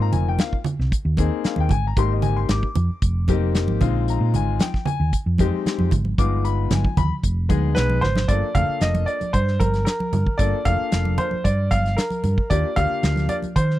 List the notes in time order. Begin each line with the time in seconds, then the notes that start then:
Already playing: A#3 C4 D#4 F4
0.00 G#2 A#5
0.12 F1 G#5, closed hi-hat, low conga
0.28 G5
0.39 F5, snare, closed hi-hat, high conga
0.53 kick
0.64 closed hi-hat, low conga
0.79 C2, snare
0.92 kick, closed hi-hat
1.05 D#2
1.17 A#3 C4 D#4 G#4, kick, closed hi-hat, high conga
1.44 F5, muted fingered electric bass stroke, snare, closed hi-hat
1.56 D#2, high conga
1.60 G5
1.69 G#1 G#5, kick, closed hi-hat, low conga
1.87 A#5
1.97 G#1 A#3 C4 D#4 G4 C6, kick, closed hi-hat
2.13 D#5
2.22 G#5, closed hi-hat, low conga
2.37 C6
2.49 G#1 D6, snare, closed hi-hat, high conga
2.63 kick
2.75 F2, closed hi-hat, low conga
2.90 muted fingered electric bass stroke
3.02 F1, kick, closed hi-hat
3.28 A#3 C4 D#4 G4, kick, closed hi-hat, high conga
3.55 snare, closed hi-hat
3.68 G#1, high conga
3.81 A#1 G#3 C4 D#4 F4, kick, closed hi-hat, low conga
4.08 A#5, closed hi-hat
4.21 A#2
4.33 G#1 G#5, closed hi-hat, low conga
4.60 G5, snare, closed hi-hat, high conga
4.74 kick, snare
4.86 G#5, closed hi-hat, low conga
5.00 D#2
5.13 muted fingered electric bass stroke, kick, closed hi-hat
5.26 F2
5.38 G#3 C4 D#4 G4, kick, closed hi-hat, high conga
5.65 muted fingered electric bass stroke, snare, closed hi-hat
5.78 F2, high conga
5.91 G#1, kick, closed hi-hat, low conga
6.05 high conga
6.18 G1 G#3 B3 D#4 F4 D6, kick, closed hi-hat
6.45 B5, closed hi-hat
6.71 G1 G#5, snare, closed hi-hat, high conga, low conga
6.84 kick
6.97 D#2 B5, kick, closed hi-hat, high conga, low conga
7.10 muted fingered electric bass stroke
7.23 F1, kick, closed hi-hat
7.49 D2 G#3 B3 D#4 G#4, kick, closed hi-hat, high conga
7.75 B1 B4, snare, closed hi-hat
7.90 high conga
8.01 G#1 C5, snare, low conga
8.16 snare, high conga
8.28 G1 A#3 D4 F4 A4 D5, kick, closed hi-hat
8.55 F1 A#3 D4 F4 A4 F5, kick, closed hi-hat, low conga
8.69 muted fingered electric bass stroke
8.81 F1 D#5, snare, closed hi-hat
8.94 closed hi-hat, high conga
9.06 D5, closed hi-hat
9.21 muted fingered electric bass stroke, closed hi-hat, high conga
9.33 G2 C5, kick, closed hi-hat
9.48 snare
9.60 G1 A#4, kick, closed hi-hat, high conga
9.74 snare, closed hi-hat
9.85 A#4, snare, closed hi-hat
10.00 high conga
10.13 G2, closed hi-hat, low conga
10.27 muted fingered electric bass stroke, kick
10.38 G1 A#3 D4 F4 A4 D5, kick, closed hi-hat
10.65 F1 A#3 D4 F4 A4 F5, kick, closed hi-hat, low conga
10.81 muted fingered electric bass stroke
10.92 F1, snare, closed hi-hat
11.05 high conga
11.18 C5, closed hi-hat, low conga
11.31 muted fingered electric bass stroke, high conga
11.44 G2 D5, kick, closed hi-hat
11.71 G1 F5, kick, closed hi-hat, high conga
11.86 snare, closed hi-hat
11.97 A#4, snare, closed hi-hat
12.11 closed hi-hat, high conga
12.24 G2, closed hi-hat, low conga
12.38 kick
12.50 D#2 A#3 D4 F4 G4 D5, kick, closed hi-hat
12.76 D2 A#3 D4 F4 G4 F5, kick, closed hi-hat, low conga
12.90 muted fingered electric bass stroke
13.03 D2, snare, closed hi-hat
13.16 snare, closed hi-hat, high conga
13.29 D5, closed hi-hat, low conga
13.42 muted fingered electric bass stroke, closed hi-hat, high conga
13.56 D#3 C5, kick, closed hi-hat
13.70 snare